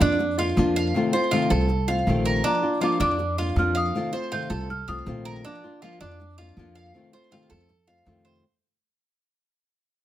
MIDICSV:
0, 0, Header, 1, 6, 480
1, 0, Start_track
1, 0, Key_signature, -2, "major"
1, 0, Tempo, 374532
1, 1215, Time_signature, 4, 2, 24, 8
1, 12878, End_track
2, 0, Start_track
2, 0, Title_t, "Marimba"
2, 0, Program_c, 0, 12
2, 3162, Note_on_c, 0, 82, 84
2, 3638, Note_on_c, 0, 86, 81
2, 3644, Note_off_c, 0, 82, 0
2, 3865, Note_off_c, 0, 86, 0
2, 3880, Note_on_c, 0, 86, 88
2, 4595, Note_on_c, 0, 89, 93
2, 4610, Note_off_c, 0, 86, 0
2, 4833, Note_off_c, 0, 89, 0
2, 4833, Note_on_c, 0, 87, 93
2, 5546, Note_on_c, 0, 91, 100
2, 5566, Note_off_c, 0, 87, 0
2, 6027, Note_on_c, 0, 89, 104
2, 6036, Note_off_c, 0, 91, 0
2, 6133, Note_off_c, 0, 89, 0
2, 6259, Note_on_c, 0, 87, 98
2, 6705, Note_off_c, 0, 87, 0
2, 12878, End_track
3, 0, Start_track
3, 0, Title_t, "Cuban tres"
3, 0, Program_c, 1, 25
3, 18, Note_on_c, 1, 62, 89
3, 482, Note_off_c, 1, 62, 0
3, 495, Note_on_c, 1, 65, 79
3, 961, Note_off_c, 1, 65, 0
3, 978, Note_on_c, 1, 77, 82
3, 1442, Note_off_c, 1, 77, 0
3, 1449, Note_on_c, 1, 72, 87
3, 1683, Note_on_c, 1, 65, 93
3, 1685, Note_off_c, 1, 72, 0
3, 1922, Note_off_c, 1, 65, 0
3, 1927, Note_on_c, 1, 69, 76
3, 2397, Note_off_c, 1, 69, 0
3, 2408, Note_on_c, 1, 77, 77
3, 2878, Note_off_c, 1, 77, 0
3, 2890, Note_on_c, 1, 70, 81
3, 3126, Note_off_c, 1, 70, 0
3, 3127, Note_on_c, 1, 62, 96
3, 3598, Note_off_c, 1, 62, 0
3, 3607, Note_on_c, 1, 65, 73
3, 3844, Note_off_c, 1, 65, 0
3, 3851, Note_on_c, 1, 62, 98
3, 4320, Note_off_c, 1, 62, 0
3, 4335, Note_on_c, 1, 65, 77
3, 4802, Note_off_c, 1, 65, 0
3, 4804, Note_on_c, 1, 77, 83
3, 5276, Note_off_c, 1, 77, 0
3, 5289, Note_on_c, 1, 72, 79
3, 5526, Note_off_c, 1, 72, 0
3, 5533, Note_on_c, 1, 65, 98
3, 5766, Note_on_c, 1, 69, 72
3, 5768, Note_off_c, 1, 65, 0
3, 6237, Note_off_c, 1, 69, 0
3, 6252, Note_on_c, 1, 77, 70
3, 6720, Note_off_c, 1, 77, 0
3, 6732, Note_on_c, 1, 70, 87
3, 6967, Note_off_c, 1, 70, 0
3, 6979, Note_on_c, 1, 62, 88
3, 7444, Note_off_c, 1, 62, 0
3, 7459, Note_on_c, 1, 65, 80
3, 7691, Note_off_c, 1, 65, 0
3, 7697, Note_on_c, 1, 62, 94
3, 8163, Note_off_c, 1, 62, 0
3, 8176, Note_on_c, 1, 65, 80
3, 8642, Note_off_c, 1, 65, 0
3, 8656, Note_on_c, 1, 77, 80
3, 9122, Note_off_c, 1, 77, 0
3, 9142, Note_on_c, 1, 72, 83
3, 9372, Note_off_c, 1, 72, 0
3, 9381, Note_on_c, 1, 65, 94
3, 9609, Note_on_c, 1, 69, 88
3, 9611, Note_off_c, 1, 65, 0
3, 10078, Note_off_c, 1, 69, 0
3, 10092, Note_on_c, 1, 77, 75
3, 10560, Note_off_c, 1, 77, 0
3, 10571, Note_on_c, 1, 72, 86
3, 10806, Note_off_c, 1, 72, 0
3, 12878, End_track
4, 0, Start_track
4, 0, Title_t, "Nylon-string guitar"
4, 0, Program_c, 2, 24
4, 15, Note_on_c, 2, 65, 47
4, 28, Note_on_c, 2, 62, 47
4, 47, Note_on_c, 2, 58, 47
4, 235, Note_off_c, 2, 58, 0
4, 245, Note_off_c, 2, 65, 0
4, 248, Note_off_c, 2, 62, 0
4, 483, Note_on_c, 2, 65, 54
4, 500, Note_on_c, 2, 62, 46
4, 512, Note_on_c, 2, 58, 43
4, 720, Note_off_c, 2, 65, 0
4, 723, Note_on_c, 2, 53, 77
4, 725, Note_off_c, 2, 58, 0
4, 728, Note_off_c, 2, 62, 0
4, 741, Note_on_c, 2, 58, 88
4, 747, Note_on_c, 2, 62, 91
4, 759, Note_on_c, 2, 65, 91
4, 1200, Note_off_c, 2, 53, 0
4, 1209, Note_off_c, 2, 58, 0
4, 1209, Note_on_c, 2, 48, 77
4, 1212, Note_off_c, 2, 62, 0
4, 1218, Note_off_c, 2, 65, 0
4, 1218, Note_on_c, 2, 51, 66
4, 1230, Note_on_c, 2, 57, 87
4, 1234, Note_on_c, 2, 60, 68
4, 1243, Note_on_c, 2, 65, 74
4, 1440, Note_off_c, 2, 65, 0
4, 1443, Note_off_c, 2, 48, 0
4, 1447, Note_off_c, 2, 51, 0
4, 1448, Note_off_c, 2, 60, 0
4, 1453, Note_off_c, 2, 57, 0
4, 1456, Note_on_c, 2, 65, 50
4, 1463, Note_on_c, 2, 60, 50
4, 1484, Note_on_c, 2, 57, 48
4, 1685, Note_on_c, 2, 48, 88
4, 1686, Note_off_c, 2, 65, 0
4, 1688, Note_off_c, 2, 57, 0
4, 1690, Note_off_c, 2, 60, 0
4, 1697, Note_on_c, 2, 51, 87
4, 1704, Note_on_c, 2, 57, 91
4, 1704, Note_on_c, 2, 60, 91
4, 1713, Note_on_c, 2, 65, 93
4, 1905, Note_off_c, 2, 65, 0
4, 1920, Note_on_c, 2, 65, 56
4, 1921, Note_off_c, 2, 48, 0
4, 1921, Note_off_c, 2, 60, 0
4, 1927, Note_off_c, 2, 51, 0
4, 1930, Note_off_c, 2, 57, 0
4, 1936, Note_on_c, 2, 60, 53
4, 1949, Note_on_c, 2, 57, 39
4, 2153, Note_off_c, 2, 57, 0
4, 2156, Note_off_c, 2, 60, 0
4, 2159, Note_off_c, 2, 65, 0
4, 2408, Note_on_c, 2, 65, 51
4, 2424, Note_on_c, 2, 60, 49
4, 2437, Note_on_c, 2, 57, 45
4, 2643, Note_off_c, 2, 65, 0
4, 2650, Note_off_c, 2, 60, 0
4, 2656, Note_on_c, 2, 48, 76
4, 2657, Note_off_c, 2, 57, 0
4, 2665, Note_on_c, 2, 51, 86
4, 2673, Note_on_c, 2, 57, 84
4, 2678, Note_on_c, 2, 60, 99
4, 2684, Note_on_c, 2, 65, 93
4, 3119, Note_off_c, 2, 51, 0
4, 3124, Note_on_c, 2, 53, 65
4, 3127, Note_off_c, 2, 48, 0
4, 3135, Note_off_c, 2, 57, 0
4, 3138, Note_off_c, 2, 60, 0
4, 3140, Note_on_c, 2, 58, 70
4, 3141, Note_off_c, 2, 65, 0
4, 3149, Note_on_c, 2, 62, 68
4, 3159, Note_on_c, 2, 65, 72
4, 3353, Note_off_c, 2, 65, 0
4, 3361, Note_off_c, 2, 53, 0
4, 3367, Note_off_c, 2, 62, 0
4, 3368, Note_on_c, 2, 65, 51
4, 3369, Note_off_c, 2, 58, 0
4, 3382, Note_on_c, 2, 62, 47
4, 3399, Note_on_c, 2, 58, 43
4, 3594, Note_on_c, 2, 53, 77
4, 3600, Note_off_c, 2, 58, 0
4, 3603, Note_off_c, 2, 65, 0
4, 3610, Note_off_c, 2, 62, 0
4, 3616, Note_on_c, 2, 58, 91
4, 3625, Note_on_c, 2, 62, 84
4, 3630, Note_on_c, 2, 65, 92
4, 3825, Note_off_c, 2, 65, 0
4, 3836, Note_off_c, 2, 53, 0
4, 3841, Note_on_c, 2, 65, 53
4, 3847, Note_off_c, 2, 58, 0
4, 3851, Note_off_c, 2, 62, 0
4, 3865, Note_on_c, 2, 62, 46
4, 3873, Note_on_c, 2, 58, 36
4, 4074, Note_off_c, 2, 62, 0
4, 4075, Note_off_c, 2, 58, 0
4, 4079, Note_off_c, 2, 65, 0
4, 4338, Note_on_c, 2, 65, 58
4, 4350, Note_on_c, 2, 62, 52
4, 4363, Note_on_c, 2, 58, 42
4, 4568, Note_off_c, 2, 65, 0
4, 4570, Note_on_c, 2, 53, 89
4, 4573, Note_off_c, 2, 58, 0
4, 4574, Note_off_c, 2, 62, 0
4, 4588, Note_on_c, 2, 58, 90
4, 4592, Note_on_c, 2, 62, 80
4, 4600, Note_on_c, 2, 65, 90
4, 5044, Note_off_c, 2, 53, 0
4, 5053, Note_off_c, 2, 58, 0
4, 5055, Note_off_c, 2, 62, 0
4, 5057, Note_on_c, 2, 48, 74
4, 5059, Note_off_c, 2, 65, 0
4, 5067, Note_on_c, 2, 51, 74
4, 5067, Note_on_c, 2, 57, 70
4, 5080, Note_on_c, 2, 60, 71
4, 5085, Note_on_c, 2, 65, 76
4, 5276, Note_off_c, 2, 65, 0
4, 5287, Note_off_c, 2, 48, 0
4, 5291, Note_off_c, 2, 60, 0
4, 5291, Note_on_c, 2, 65, 51
4, 5292, Note_off_c, 2, 51, 0
4, 5292, Note_off_c, 2, 57, 0
4, 5307, Note_on_c, 2, 60, 49
4, 5324, Note_on_c, 2, 57, 41
4, 5524, Note_off_c, 2, 65, 0
4, 5532, Note_off_c, 2, 60, 0
4, 5538, Note_on_c, 2, 48, 89
4, 5541, Note_off_c, 2, 57, 0
4, 5551, Note_on_c, 2, 51, 74
4, 5554, Note_on_c, 2, 57, 69
4, 5559, Note_on_c, 2, 60, 87
4, 5573, Note_on_c, 2, 65, 83
4, 5757, Note_off_c, 2, 65, 0
4, 5768, Note_off_c, 2, 48, 0
4, 5772, Note_on_c, 2, 65, 53
4, 5775, Note_off_c, 2, 51, 0
4, 5776, Note_off_c, 2, 57, 0
4, 5776, Note_off_c, 2, 60, 0
4, 5791, Note_on_c, 2, 60, 43
4, 5802, Note_on_c, 2, 57, 38
4, 6005, Note_off_c, 2, 65, 0
4, 6014, Note_off_c, 2, 60, 0
4, 6015, Note_off_c, 2, 57, 0
4, 6263, Note_on_c, 2, 65, 51
4, 6274, Note_on_c, 2, 60, 55
4, 6288, Note_on_c, 2, 57, 50
4, 6485, Note_on_c, 2, 48, 73
4, 6489, Note_off_c, 2, 57, 0
4, 6490, Note_off_c, 2, 65, 0
4, 6493, Note_off_c, 2, 60, 0
4, 6497, Note_on_c, 2, 51, 84
4, 6505, Note_on_c, 2, 57, 95
4, 6508, Note_on_c, 2, 60, 87
4, 6520, Note_on_c, 2, 65, 94
4, 6961, Note_off_c, 2, 48, 0
4, 6967, Note_off_c, 2, 51, 0
4, 6971, Note_off_c, 2, 57, 0
4, 6973, Note_off_c, 2, 60, 0
4, 6978, Note_on_c, 2, 53, 65
4, 6979, Note_off_c, 2, 65, 0
4, 6990, Note_on_c, 2, 58, 67
4, 6999, Note_on_c, 2, 62, 66
4, 7005, Note_on_c, 2, 65, 74
4, 7208, Note_off_c, 2, 53, 0
4, 7212, Note_off_c, 2, 65, 0
4, 7214, Note_off_c, 2, 58, 0
4, 7218, Note_off_c, 2, 62, 0
4, 7227, Note_on_c, 2, 65, 61
4, 7242, Note_on_c, 2, 62, 44
4, 7254, Note_on_c, 2, 58, 42
4, 7452, Note_off_c, 2, 65, 0
4, 7458, Note_off_c, 2, 58, 0
4, 7460, Note_off_c, 2, 62, 0
4, 7463, Note_on_c, 2, 53, 84
4, 7473, Note_on_c, 2, 58, 84
4, 7484, Note_on_c, 2, 62, 76
4, 7492, Note_on_c, 2, 65, 85
4, 7686, Note_off_c, 2, 65, 0
4, 7690, Note_off_c, 2, 53, 0
4, 7695, Note_off_c, 2, 58, 0
4, 7701, Note_off_c, 2, 62, 0
4, 7702, Note_on_c, 2, 65, 51
4, 7723, Note_on_c, 2, 62, 45
4, 7738, Note_on_c, 2, 58, 40
4, 7930, Note_off_c, 2, 65, 0
4, 7940, Note_off_c, 2, 62, 0
4, 7944, Note_off_c, 2, 58, 0
4, 8181, Note_on_c, 2, 65, 56
4, 8203, Note_on_c, 2, 62, 54
4, 8217, Note_on_c, 2, 58, 42
4, 8409, Note_off_c, 2, 65, 0
4, 8420, Note_off_c, 2, 62, 0
4, 8422, Note_on_c, 2, 53, 82
4, 8427, Note_off_c, 2, 58, 0
4, 8441, Note_on_c, 2, 58, 83
4, 8446, Note_on_c, 2, 62, 91
4, 8450, Note_on_c, 2, 65, 97
4, 8890, Note_off_c, 2, 53, 0
4, 8894, Note_on_c, 2, 48, 64
4, 8899, Note_off_c, 2, 58, 0
4, 8902, Note_off_c, 2, 62, 0
4, 8904, Note_off_c, 2, 65, 0
4, 8905, Note_on_c, 2, 51, 75
4, 8908, Note_on_c, 2, 57, 75
4, 8918, Note_on_c, 2, 60, 71
4, 8924, Note_on_c, 2, 65, 77
4, 9122, Note_off_c, 2, 65, 0
4, 9126, Note_off_c, 2, 48, 0
4, 9131, Note_off_c, 2, 51, 0
4, 9133, Note_off_c, 2, 57, 0
4, 9135, Note_off_c, 2, 60, 0
4, 9137, Note_on_c, 2, 65, 47
4, 9150, Note_on_c, 2, 60, 48
4, 9167, Note_on_c, 2, 57, 46
4, 9367, Note_off_c, 2, 65, 0
4, 9370, Note_on_c, 2, 48, 82
4, 9372, Note_off_c, 2, 57, 0
4, 9374, Note_off_c, 2, 60, 0
4, 9374, Note_on_c, 2, 51, 77
4, 9387, Note_on_c, 2, 57, 93
4, 9387, Note_on_c, 2, 60, 86
4, 9398, Note_on_c, 2, 65, 91
4, 9594, Note_off_c, 2, 65, 0
4, 9604, Note_off_c, 2, 48, 0
4, 9606, Note_off_c, 2, 51, 0
4, 9610, Note_on_c, 2, 65, 48
4, 9612, Note_off_c, 2, 57, 0
4, 9612, Note_off_c, 2, 60, 0
4, 9631, Note_on_c, 2, 60, 49
4, 9642, Note_on_c, 2, 57, 41
4, 9843, Note_off_c, 2, 65, 0
4, 9845, Note_off_c, 2, 57, 0
4, 9850, Note_off_c, 2, 60, 0
4, 10091, Note_on_c, 2, 65, 53
4, 10106, Note_on_c, 2, 60, 49
4, 10122, Note_on_c, 2, 57, 45
4, 10324, Note_off_c, 2, 65, 0
4, 10325, Note_on_c, 2, 48, 77
4, 10331, Note_off_c, 2, 60, 0
4, 10332, Note_off_c, 2, 57, 0
4, 10338, Note_on_c, 2, 51, 80
4, 10348, Note_on_c, 2, 57, 85
4, 10351, Note_on_c, 2, 60, 96
4, 10355, Note_on_c, 2, 65, 91
4, 10801, Note_off_c, 2, 48, 0
4, 10807, Note_off_c, 2, 51, 0
4, 10812, Note_off_c, 2, 57, 0
4, 10814, Note_off_c, 2, 60, 0
4, 10816, Note_off_c, 2, 65, 0
4, 12878, End_track
5, 0, Start_track
5, 0, Title_t, "Upright bass"
5, 0, Program_c, 3, 32
5, 6, Note_on_c, 3, 41, 105
5, 680, Note_off_c, 3, 41, 0
5, 730, Note_on_c, 3, 41, 97
5, 1157, Note_off_c, 3, 41, 0
5, 1930, Note_on_c, 3, 36, 102
5, 2603, Note_off_c, 3, 36, 0
5, 2650, Note_on_c, 3, 34, 90
5, 3078, Note_off_c, 3, 34, 0
5, 3842, Note_on_c, 3, 41, 103
5, 4519, Note_off_c, 3, 41, 0
5, 4564, Note_on_c, 3, 41, 94
5, 4994, Note_off_c, 3, 41, 0
5, 5766, Note_on_c, 3, 36, 106
5, 6218, Note_off_c, 3, 36, 0
5, 6258, Note_on_c, 3, 36, 81
5, 6481, Note_off_c, 3, 36, 0
5, 6490, Note_on_c, 3, 34, 94
5, 6918, Note_off_c, 3, 34, 0
5, 7698, Note_on_c, 3, 41, 90
5, 8367, Note_off_c, 3, 41, 0
5, 8416, Note_on_c, 3, 41, 93
5, 8840, Note_off_c, 3, 41, 0
5, 9621, Note_on_c, 3, 41, 97
5, 10288, Note_off_c, 3, 41, 0
5, 10334, Note_on_c, 3, 41, 101
5, 10759, Note_off_c, 3, 41, 0
5, 12878, End_track
6, 0, Start_track
6, 0, Title_t, "Muted nylon-string guitar strokes"
6, 245, Note_on_c, 9, 29, 63
6, 373, Note_off_c, 9, 29, 0
6, 2159, Note_on_c, 9, 29, 55
6, 2287, Note_off_c, 9, 29, 0
6, 4082, Note_on_c, 9, 29, 66
6, 4210, Note_off_c, 9, 29, 0
6, 6024, Note_on_c, 9, 29, 60
6, 6152, Note_off_c, 9, 29, 0
6, 7943, Note_on_c, 9, 29, 60
6, 8072, Note_off_c, 9, 29, 0
6, 9853, Note_on_c, 9, 29, 71
6, 9981, Note_off_c, 9, 29, 0
6, 12878, End_track
0, 0, End_of_file